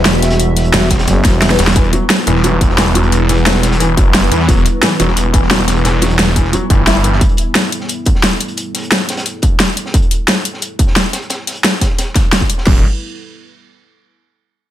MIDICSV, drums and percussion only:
0, 0, Header, 1, 2, 480
1, 0, Start_track
1, 0, Key_signature, 1, "minor"
1, 0, Tempo, 340909
1, 556, Time_signature, 4, 2, 24, 8
1, 20707, End_track
2, 0, Start_track
2, 0, Title_t, "Drums"
2, 71, Note_on_c, 9, 42, 86
2, 75, Note_on_c, 9, 38, 115
2, 76, Note_off_c, 9, 38, 0
2, 76, Note_off_c, 9, 42, 0
2, 76, Note_on_c, 9, 38, 115
2, 76, Note_on_c, 9, 42, 77
2, 217, Note_off_c, 9, 38, 0
2, 217, Note_off_c, 9, 42, 0
2, 315, Note_on_c, 9, 42, 90
2, 317, Note_off_c, 9, 42, 0
2, 317, Note_on_c, 9, 42, 92
2, 323, Note_on_c, 9, 38, 116
2, 427, Note_off_c, 9, 42, 0
2, 427, Note_on_c, 9, 42, 82
2, 438, Note_off_c, 9, 38, 0
2, 438, Note_on_c, 9, 38, 98
2, 557, Note_off_c, 9, 42, 0
2, 557, Note_on_c, 9, 42, 81
2, 561, Note_off_c, 9, 42, 0
2, 561, Note_on_c, 9, 42, 85
2, 579, Note_off_c, 9, 38, 0
2, 701, Note_off_c, 9, 42, 0
2, 796, Note_on_c, 9, 42, 95
2, 797, Note_on_c, 9, 46, 85
2, 801, Note_on_c, 9, 38, 38
2, 916, Note_off_c, 9, 42, 0
2, 916, Note_on_c, 9, 42, 48
2, 938, Note_off_c, 9, 46, 0
2, 942, Note_off_c, 9, 38, 0
2, 1023, Note_off_c, 9, 42, 0
2, 1023, Note_on_c, 9, 42, 86
2, 1035, Note_on_c, 9, 38, 113
2, 1037, Note_off_c, 9, 38, 0
2, 1037, Note_off_c, 9, 42, 0
2, 1037, Note_on_c, 9, 38, 112
2, 1037, Note_on_c, 9, 42, 82
2, 1178, Note_off_c, 9, 38, 0
2, 1178, Note_off_c, 9, 42, 0
2, 1265, Note_on_c, 9, 42, 72
2, 1276, Note_off_c, 9, 42, 0
2, 1276, Note_on_c, 9, 36, 60
2, 1276, Note_on_c, 9, 42, 93
2, 1283, Note_on_c, 9, 38, 94
2, 1397, Note_off_c, 9, 42, 0
2, 1397, Note_on_c, 9, 42, 75
2, 1404, Note_off_c, 9, 38, 0
2, 1404, Note_on_c, 9, 38, 113
2, 1416, Note_off_c, 9, 36, 0
2, 1509, Note_off_c, 9, 42, 0
2, 1509, Note_on_c, 9, 42, 81
2, 1513, Note_off_c, 9, 38, 0
2, 1513, Note_on_c, 9, 38, 114
2, 1516, Note_off_c, 9, 42, 0
2, 1516, Note_on_c, 9, 42, 85
2, 1654, Note_off_c, 9, 38, 0
2, 1657, Note_off_c, 9, 42, 0
2, 1746, Note_on_c, 9, 42, 69
2, 1755, Note_on_c, 9, 36, 105
2, 1756, Note_off_c, 9, 42, 0
2, 1756, Note_on_c, 9, 38, 67
2, 1756, Note_on_c, 9, 42, 97
2, 1896, Note_off_c, 9, 36, 0
2, 1897, Note_off_c, 9, 38, 0
2, 1897, Note_off_c, 9, 42, 0
2, 1992, Note_on_c, 9, 38, 115
2, 1996, Note_on_c, 9, 42, 86
2, 1997, Note_off_c, 9, 38, 0
2, 1997, Note_off_c, 9, 42, 0
2, 1997, Note_on_c, 9, 38, 74
2, 1997, Note_on_c, 9, 42, 84
2, 2117, Note_off_c, 9, 38, 0
2, 2117, Note_on_c, 9, 38, 73
2, 2137, Note_off_c, 9, 42, 0
2, 2234, Note_off_c, 9, 38, 0
2, 2234, Note_on_c, 9, 38, 96
2, 2236, Note_on_c, 9, 42, 100
2, 2237, Note_off_c, 9, 42, 0
2, 2237, Note_on_c, 9, 42, 66
2, 2286, Note_off_c, 9, 38, 0
2, 2286, Note_on_c, 9, 38, 90
2, 2295, Note_off_c, 9, 42, 0
2, 2295, Note_on_c, 9, 42, 73
2, 2357, Note_off_c, 9, 38, 0
2, 2357, Note_on_c, 9, 38, 88
2, 2358, Note_off_c, 9, 38, 0
2, 2358, Note_on_c, 9, 38, 89
2, 2361, Note_off_c, 9, 42, 0
2, 2361, Note_on_c, 9, 42, 70
2, 2408, Note_off_c, 9, 38, 0
2, 2408, Note_on_c, 9, 38, 82
2, 2421, Note_off_c, 9, 42, 0
2, 2421, Note_on_c, 9, 42, 64
2, 2471, Note_off_c, 9, 42, 0
2, 2471, Note_on_c, 9, 42, 83
2, 2476, Note_on_c, 9, 36, 119
2, 2477, Note_off_c, 9, 42, 0
2, 2477, Note_on_c, 9, 42, 83
2, 2548, Note_off_c, 9, 38, 0
2, 2588, Note_off_c, 9, 42, 0
2, 2588, Note_on_c, 9, 42, 42
2, 2616, Note_off_c, 9, 36, 0
2, 2714, Note_off_c, 9, 42, 0
2, 2714, Note_on_c, 9, 42, 65
2, 2716, Note_off_c, 9, 42, 0
2, 2716, Note_on_c, 9, 42, 95
2, 2857, Note_off_c, 9, 42, 0
2, 2954, Note_on_c, 9, 42, 82
2, 2956, Note_on_c, 9, 38, 125
2, 2957, Note_off_c, 9, 38, 0
2, 2957, Note_off_c, 9, 42, 0
2, 2957, Note_on_c, 9, 38, 120
2, 2957, Note_on_c, 9, 42, 78
2, 3098, Note_off_c, 9, 38, 0
2, 3098, Note_off_c, 9, 42, 0
2, 3196, Note_on_c, 9, 42, 97
2, 3199, Note_off_c, 9, 42, 0
2, 3199, Note_on_c, 9, 42, 59
2, 3318, Note_on_c, 9, 38, 37
2, 3340, Note_off_c, 9, 42, 0
2, 3429, Note_on_c, 9, 42, 81
2, 3437, Note_off_c, 9, 42, 0
2, 3437, Note_on_c, 9, 42, 85
2, 3459, Note_off_c, 9, 38, 0
2, 3578, Note_off_c, 9, 42, 0
2, 3675, Note_on_c, 9, 36, 102
2, 3677, Note_on_c, 9, 42, 99
2, 3684, Note_off_c, 9, 42, 0
2, 3684, Note_on_c, 9, 42, 71
2, 3794, Note_on_c, 9, 38, 43
2, 3816, Note_off_c, 9, 36, 0
2, 3825, Note_off_c, 9, 42, 0
2, 3912, Note_off_c, 9, 38, 0
2, 3912, Note_on_c, 9, 38, 126
2, 3915, Note_on_c, 9, 42, 92
2, 3917, Note_off_c, 9, 38, 0
2, 3917, Note_off_c, 9, 42, 0
2, 3917, Note_on_c, 9, 38, 115
2, 3917, Note_on_c, 9, 42, 82
2, 4058, Note_off_c, 9, 38, 0
2, 4058, Note_off_c, 9, 42, 0
2, 4149, Note_on_c, 9, 42, 70
2, 4158, Note_off_c, 9, 42, 0
2, 4158, Note_on_c, 9, 42, 97
2, 4269, Note_off_c, 9, 42, 0
2, 4269, Note_on_c, 9, 42, 39
2, 4397, Note_off_c, 9, 42, 0
2, 4397, Note_on_c, 9, 42, 84
2, 4402, Note_off_c, 9, 42, 0
2, 4402, Note_on_c, 9, 42, 81
2, 4543, Note_off_c, 9, 42, 0
2, 4637, Note_on_c, 9, 42, 93
2, 4638, Note_on_c, 9, 46, 76
2, 4640, Note_on_c, 9, 38, 45
2, 4762, Note_off_c, 9, 42, 0
2, 4762, Note_on_c, 9, 42, 40
2, 4779, Note_off_c, 9, 46, 0
2, 4781, Note_off_c, 9, 38, 0
2, 4873, Note_on_c, 9, 38, 112
2, 4877, Note_off_c, 9, 38, 0
2, 4877, Note_off_c, 9, 42, 0
2, 4877, Note_on_c, 9, 38, 117
2, 4877, Note_on_c, 9, 42, 80
2, 4884, Note_off_c, 9, 42, 0
2, 4884, Note_on_c, 9, 42, 79
2, 5018, Note_off_c, 9, 38, 0
2, 5025, Note_off_c, 9, 42, 0
2, 5110, Note_on_c, 9, 38, 107
2, 5116, Note_on_c, 9, 42, 100
2, 5118, Note_off_c, 9, 42, 0
2, 5118, Note_on_c, 9, 42, 72
2, 5234, Note_off_c, 9, 38, 0
2, 5234, Note_on_c, 9, 38, 94
2, 5243, Note_off_c, 9, 42, 0
2, 5243, Note_on_c, 9, 42, 78
2, 5352, Note_off_c, 9, 42, 0
2, 5352, Note_on_c, 9, 42, 92
2, 5356, Note_off_c, 9, 42, 0
2, 5356, Note_on_c, 9, 42, 84
2, 5374, Note_off_c, 9, 38, 0
2, 5497, Note_off_c, 9, 42, 0
2, 5595, Note_on_c, 9, 36, 111
2, 5597, Note_on_c, 9, 42, 103
2, 5600, Note_off_c, 9, 42, 0
2, 5600, Note_on_c, 9, 42, 60
2, 5736, Note_off_c, 9, 36, 0
2, 5740, Note_off_c, 9, 42, 0
2, 5833, Note_on_c, 9, 42, 89
2, 5836, Note_off_c, 9, 42, 0
2, 5836, Note_on_c, 9, 38, 125
2, 5836, Note_on_c, 9, 42, 84
2, 5977, Note_off_c, 9, 38, 0
2, 5977, Note_off_c, 9, 42, 0
2, 6077, Note_on_c, 9, 42, 98
2, 6081, Note_off_c, 9, 42, 0
2, 6081, Note_on_c, 9, 42, 70
2, 6192, Note_on_c, 9, 38, 47
2, 6222, Note_off_c, 9, 42, 0
2, 6315, Note_on_c, 9, 36, 122
2, 6317, Note_on_c, 9, 42, 95
2, 6333, Note_off_c, 9, 38, 0
2, 6456, Note_off_c, 9, 36, 0
2, 6458, Note_off_c, 9, 42, 0
2, 6552, Note_on_c, 9, 42, 65
2, 6557, Note_off_c, 9, 42, 0
2, 6557, Note_on_c, 9, 42, 93
2, 6697, Note_off_c, 9, 42, 0
2, 6789, Note_on_c, 9, 42, 97
2, 6791, Note_on_c, 9, 38, 111
2, 6796, Note_off_c, 9, 38, 0
2, 6796, Note_off_c, 9, 42, 0
2, 6796, Note_on_c, 9, 38, 122
2, 6796, Note_on_c, 9, 42, 81
2, 6937, Note_off_c, 9, 38, 0
2, 6937, Note_off_c, 9, 42, 0
2, 7036, Note_on_c, 9, 42, 93
2, 7042, Note_off_c, 9, 42, 0
2, 7042, Note_on_c, 9, 42, 70
2, 7153, Note_on_c, 9, 38, 40
2, 7183, Note_off_c, 9, 42, 0
2, 7276, Note_on_c, 9, 42, 86
2, 7278, Note_off_c, 9, 42, 0
2, 7278, Note_on_c, 9, 42, 97
2, 7294, Note_off_c, 9, 38, 0
2, 7419, Note_off_c, 9, 42, 0
2, 7515, Note_on_c, 9, 36, 111
2, 7516, Note_on_c, 9, 42, 100
2, 7523, Note_off_c, 9, 42, 0
2, 7523, Note_on_c, 9, 42, 72
2, 7640, Note_on_c, 9, 38, 43
2, 7656, Note_off_c, 9, 36, 0
2, 7664, Note_off_c, 9, 42, 0
2, 7752, Note_off_c, 9, 38, 0
2, 7752, Note_on_c, 9, 38, 126
2, 7752, Note_on_c, 9, 42, 86
2, 7756, Note_off_c, 9, 38, 0
2, 7756, Note_off_c, 9, 42, 0
2, 7756, Note_on_c, 9, 38, 127
2, 7756, Note_on_c, 9, 42, 79
2, 7897, Note_off_c, 9, 38, 0
2, 7897, Note_off_c, 9, 42, 0
2, 7995, Note_on_c, 9, 42, 83
2, 7996, Note_off_c, 9, 42, 0
2, 7996, Note_on_c, 9, 42, 98
2, 8000, Note_on_c, 9, 38, 123
2, 8112, Note_off_c, 9, 42, 0
2, 8112, Note_on_c, 9, 42, 40
2, 8141, Note_off_c, 9, 38, 0
2, 8237, Note_off_c, 9, 42, 0
2, 8237, Note_on_c, 9, 42, 81
2, 8239, Note_on_c, 9, 38, 116
2, 8245, Note_off_c, 9, 42, 0
2, 8245, Note_on_c, 9, 42, 84
2, 8380, Note_off_c, 9, 38, 0
2, 8386, Note_off_c, 9, 42, 0
2, 8467, Note_on_c, 9, 46, 85
2, 8477, Note_on_c, 9, 42, 92
2, 8478, Note_on_c, 9, 38, 37
2, 8591, Note_off_c, 9, 42, 0
2, 8591, Note_on_c, 9, 42, 41
2, 8608, Note_off_c, 9, 46, 0
2, 8619, Note_off_c, 9, 38, 0
2, 8713, Note_off_c, 9, 42, 0
2, 8713, Note_on_c, 9, 42, 90
2, 8714, Note_on_c, 9, 38, 115
2, 8716, Note_off_c, 9, 38, 0
2, 8716, Note_off_c, 9, 42, 0
2, 8716, Note_on_c, 9, 38, 119
2, 8716, Note_on_c, 9, 42, 75
2, 8857, Note_off_c, 9, 38, 0
2, 8857, Note_off_c, 9, 42, 0
2, 8955, Note_on_c, 9, 36, 64
2, 8956, Note_on_c, 9, 42, 67
2, 8957, Note_off_c, 9, 42, 0
2, 8957, Note_on_c, 9, 42, 86
2, 9074, Note_on_c, 9, 38, 38
2, 9096, Note_off_c, 9, 36, 0
2, 9098, Note_off_c, 9, 42, 0
2, 9194, Note_on_c, 9, 42, 86
2, 9196, Note_off_c, 9, 42, 0
2, 9196, Note_on_c, 9, 42, 78
2, 9215, Note_off_c, 9, 38, 0
2, 9337, Note_off_c, 9, 42, 0
2, 9435, Note_on_c, 9, 36, 112
2, 9436, Note_on_c, 9, 42, 95
2, 9438, Note_off_c, 9, 42, 0
2, 9438, Note_on_c, 9, 42, 72
2, 9576, Note_off_c, 9, 36, 0
2, 9578, Note_off_c, 9, 42, 0
2, 9666, Note_on_c, 9, 38, 112
2, 9676, Note_off_c, 9, 38, 0
2, 9676, Note_on_c, 9, 38, 120
2, 9676, Note_on_c, 9, 42, 80
2, 9817, Note_off_c, 9, 38, 0
2, 9817, Note_off_c, 9, 42, 0
2, 9908, Note_on_c, 9, 42, 70
2, 9915, Note_off_c, 9, 42, 0
2, 9915, Note_on_c, 9, 42, 90
2, 10035, Note_on_c, 9, 38, 49
2, 10056, Note_off_c, 9, 42, 0
2, 10154, Note_on_c, 9, 42, 76
2, 10155, Note_on_c, 9, 36, 121
2, 10156, Note_off_c, 9, 42, 0
2, 10156, Note_on_c, 9, 42, 85
2, 10176, Note_off_c, 9, 38, 0
2, 10266, Note_off_c, 9, 42, 0
2, 10266, Note_on_c, 9, 42, 39
2, 10296, Note_off_c, 9, 36, 0
2, 10379, Note_off_c, 9, 42, 0
2, 10379, Note_on_c, 9, 42, 74
2, 10394, Note_off_c, 9, 42, 0
2, 10394, Note_on_c, 9, 42, 90
2, 10535, Note_off_c, 9, 42, 0
2, 10634, Note_on_c, 9, 38, 114
2, 10634, Note_on_c, 9, 42, 73
2, 10635, Note_off_c, 9, 38, 0
2, 10635, Note_on_c, 9, 38, 102
2, 10643, Note_off_c, 9, 42, 0
2, 10643, Note_on_c, 9, 42, 94
2, 10776, Note_off_c, 9, 38, 0
2, 10784, Note_off_c, 9, 42, 0
2, 10875, Note_on_c, 9, 42, 88
2, 10878, Note_off_c, 9, 42, 0
2, 10878, Note_on_c, 9, 42, 61
2, 10988, Note_on_c, 9, 38, 40
2, 11019, Note_off_c, 9, 42, 0
2, 11104, Note_on_c, 9, 42, 88
2, 11115, Note_off_c, 9, 42, 0
2, 11115, Note_on_c, 9, 42, 77
2, 11129, Note_off_c, 9, 38, 0
2, 11256, Note_off_c, 9, 42, 0
2, 11342, Note_on_c, 9, 42, 67
2, 11355, Note_off_c, 9, 42, 0
2, 11355, Note_on_c, 9, 36, 103
2, 11355, Note_on_c, 9, 42, 96
2, 11479, Note_on_c, 9, 38, 50
2, 11496, Note_off_c, 9, 36, 0
2, 11496, Note_off_c, 9, 42, 0
2, 11589, Note_off_c, 9, 38, 0
2, 11589, Note_on_c, 9, 38, 119
2, 11595, Note_off_c, 9, 38, 0
2, 11595, Note_on_c, 9, 38, 123
2, 11595, Note_on_c, 9, 42, 76
2, 11602, Note_off_c, 9, 42, 0
2, 11602, Note_on_c, 9, 42, 89
2, 11736, Note_off_c, 9, 38, 0
2, 11743, Note_off_c, 9, 42, 0
2, 11828, Note_on_c, 9, 42, 64
2, 11835, Note_off_c, 9, 42, 0
2, 11835, Note_on_c, 9, 42, 95
2, 11942, Note_off_c, 9, 42, 0
2, 11942, Note_on_c, 9, 42, 45
2, 12070, Note_off_c, 9, 42, 0
2, 12070, Note_on_c, 9, 42, 84
2, 12075, Note_off_c, 9, 42, 0
2, 12075, Note_on_c, 9, 42, 74
2, 12216, Note_off_c, 9, 42, 0
2, 12312, Note_on_c, 9, 38, 42
2, 12316, Note_on_c, 9, 42, 83
2, 12318, Note_on_c, 9, 46, 88
2, 12438, Note_off_c, 9, 42, 0
2, 12438, Note_on_c, 9, 42, 40
2, 12453, Note_off_c, 9, 38, 0
2, 12459, Note_off_c, 9, 46, 0
2, 12544, Note_on_c, 9, 38, 105
2, 12556, Note_off_c, 9, 38, 0
2, 12556, Note_off_c, 9, 42, 0
2, 12556, Note_on_c, 9, 38, 110
2, 12556, Note_on_c, 9, 42, 73
2, 12557, Note_off_c, 9, 42, 0
2, 12557, Note_on_c, 9, 42, 93
2, 12697, Note_off_c, 9, 38, 0
2, 12698, Note_off_c, 9, 42, 0
2, 12795, Note_on_c, 9, 42, 92
2, 12796, Note_off_c, 9, 42, 0
2, 12796, Note_on_c, 9, 42, 76
2, 12814, Note_on_c, 9, 38, 97
2, 12915, Note_off_c, 9, 42, 0
2, 12915, Note_on_c, 9, 42, 79
2, 12919, Note_off_c, 9, 38, 0
2, 12919, Note_on_c, 9, 38, 97
2, 13035, Note_off_c, 9, 42, 0
2, 13035, Note_on_c, 9, 42, 75
2, 13038, Note_off_c, 9, 42, 0
2, 13038, Note_on_c, 9, 42, 83
2, 13060, Note_off_c, 9, 38, 0
2, 13179, Note_off_c, 9, 42, 0
2, 13265, Note_on_c, 9, 42, 74
2, 13275, Note_on_c, 9, 36, 100
2, 13276, Note_off_c, 9, 42, 0
2, 13276, Note_on_c, 9, 42, 93
2, 13416, Note_off_c, 9, 36, 0
2, 13417, Note_off_c, 9, 42, 0
2, 13506, Note_on_c, 9, 42, 92
2, 13511, Note_on_c, 9, 38, 113
2, 13516, Note_off_c, 9, 38, 0
2, 13516, Note_off_c, 9, 42, 0
2, 13516, Note_on_c, 9, 38, 116
2, 13516, Note_on_c, 9, 42, 73
2, 13656, Note_off_c, 9, 38, 0
2, 13656, Note_off_c, 9, 42, 0
2, 13751, Note_on_c, 9, 42, 74
2, 13756, Note_off_c, 9, 42, 0
2, 13756, Note_on_c, 9, 42, 92
2, 13879, Note_on_c, 9, 38, 57
2, 13897, Note_off_c, 9, 42, 0
2, 13995, Note_on_c, 9, 36, 118
2, 13996, Note_on_c, 9, 42, 79
2, 13997, Note_off_c, 9, 42, 0
2, 13997, Note_on_c, 9, 42, 96
2, 14020, Note_off_c, 9, 38, 0
2, 14111, Note_off_c, 9, 42, 0
2, 14111, Note_on_c, 9, 42, 46
2, 14136, Note_off_c, 9, 36, 0
2, 14236, Note_off_c, 9, 42, 0
2, 14236, Note_on_c, 9, 42, 88
2, 14252, Note_off_c, 9, 42, 0
2, 14252, Note_on_c, 9, 42, 73
2, 14393, Note_off_c, 9, 42, 0
2, 14470, Note_on_c, 9, 38, 122
2, 14476, Note_off_c, 9, 38, 0
2, 14476, Note_on_c, 9, 38, 115
2, 14476, Note_on_c, 9, 42, 74
2, 14477, Note_off_c, 9, 42, 0
2, 14477, Note_on_c, 9, 42, 81
2, 14617, Note_off_c, 9, 38, 0
2, 14618, Note_off_c, 9, 42, 0
2, 14716, Note_on_c, 9, 42, 94
2, 14717, Note_off_c, 9, 42, 0
2, 14717, Note_on_c, 9, 42, 69
2, 14835, Note_on_c, 9, 38, 38
2, 14858, Note_off_c, 9, 42, 0
2, 14951, Note_on_c, 9, 42, 81
2, 14956, Note_off_c, 9, 42, 0
2, 14956, Note_on_c, 9, 42, 79
2, 14975, Note_off_c, 9, 38, 0
2, 15096, Note_off_c, 9, 42, 0
2, 15192, Note_on_c, 9, 42, 67
2, 15195, Note_on_c, 9, 36, 105
2, 15196, Note_off_c, 9, 42, 0
2, 15196, Note_on_c, 9, 42, 93
2, 15309, Note_on_c, 9, 38, 44
2, 15336, Note_off_c, 9, 36, 0
2, 15337, Note_off_c, 9, 42, 0
2, 15432, Note_on_c, 9, 42, 84
2, 15434, Note_off_c, 9, 38, 0
2, 15434, Note_on_c, 9, 38, 117
2, 15436, Note_off_c, 9, 38, 0
2, 15436, Note_off_c, 9, 42, 0
2, 15436, Note_on_c, 9, 38, 107
2, 15436, Note_on_c, 9, 42, 76
2, 15577, Note_off_c, 9, 38, 0
2, 15577, Note_off_c, 9, 42, 0
2, 15673, Note_on_c, 9, 38, 100
2, 15674, Note_on_c, 9, 42, 78
2, 15676, Note_off_c, 9, 42, 0
2, 15676, Note_on_c, 9, 42, 93
2, 15799, Note_off_c, 9, 42, 0
2, 15799, Note_on_c, 9, 42, 41
2, 15814, Note_off_c, 9, 38, 0
2, 15906, Note_off_c, 9, 42, 0
2, 15906, Note_on_c, 9, 42, 81
2, 15913, Note_on_c, 9, 38, 113
2, 15916, Note_off_c, 9, 42, 0
2, 15916, Note_on_c, 9, 42, 79
2, 16054, Note_off_c, 9, 38, 0
2, 16057, Note_off_c, 9, 42, 0
2, 16153, Note_on_c, 9, 46, 86
2, 16155, Note_on_c, 9, 42, 92
2, 16159, Note_on_c, 9, 38, 43
2, 16271, Note_off_c, 9, 42, 0
2, 16271, Note_on_c, 9, 42, 41
2, 16294, Note_off_c, 9, 46, 0
2, 16300, Note_off_c, 9, 38, 0
2, 16394, Note_off_c, 9, 42, 0
2, 16394, Note_on_c, 9, 42, 95
2, 16395, Note_off_c, 9, 42, 0
2, 16395, Note_on_c, 9, 38, 116
2, 16395, Note_on_c, 9, 42, 79
2, 16398, Note_off_c, 9, 38, 0
2, 16398, Note_on_c, 9, 38, 116
2, 16536, Note_off_c, 9, 42, 0
2, 16539, Note_off_c, 9, 38, 0
2, 16635, Note_on_c, 9, 36, 62
2, 16635, Note_on_c, 9, 42, 91
2, 16637, Note_on_c, 9, 38, 105
2, 16644, Note_off_c, 9, 42, 0
2, 16644, Note_on_c, 9, 42, 74
2, 16752, Note_off_c, 9, 38, 0
2, 16752, Note_on_c, 9, 38, 41
2, 16775, Note_off_c, 9, 36, 0
2, 16785, Note_off_c, 9, 42, 0
2, 16873, Note_on_c, 9, 42, 86
2, 16875, Note_off_c, 9, 42, 0
2, 16875, Note_on_c, 9, 42, 81
2, 16879, Note_off_c, 9, 38, 0
2, 16879, Note_on_c, 9, 38, 100
2, 17016, Note_off_c, 9, 42, 0
2, 17020, Note_off_c, 9, 38, 0
2, 17115, Note_on_c, 9, 36, 103
2, 17116, Note_on_c, 9, 38, 37
2, 17116, Note_on_c, 9, 42, 68
2, 17255, Note_off_c, 9, 36, 0
2, 17256, Note_off_c, 9, 38, 0
2, 17257, Note_off_c, 9, 42, 0
2, 17353, Note_on_c, 9, 42, 89
2, 17354, Note_off_c, 9, 42, 0
2, 17354, Note_on_c, 9, 38, 113
2, 17354, Note_on_c, 9, 42, 79
2, 17361, Note_off_c, 9, 38, 0
2, 17361, Note_on_c, 9, 38, 119
2, 17475, Note_on_c, 9, 36, 56
2, 17495, Note_off_c, 9, 42, 0
2, 17502, Note_off_c, 9, 38, 0
2, 17588, Note_on_c, 9, 42, 69
2, 17594, Note_off_c, 9, 42, 0
2, 17594, Note_on_c, 9, 42, 91
2, 17615, Note_off_c, 9, 36, 0
2, 17710, Note_on_c, 9, 38, 51
2, 17735, Note_off_c, 9, 42, 0
2, 17834, Note_off_c, 9, 38, 0
2, 17834, Note_on_c, 9, 38, 106
2, 17834, Note_on_c, 9, 49, 93
2, 17835, Note_on_c, 9, 36, 108
2, 17975, Note_off_c, 9, 38, 0
2, 17975, Note_off_c, 9, 49, 0
2, 17976, Note_off_c, 9, 36, 0
2, 20707, End_track
0, 0, End_of_file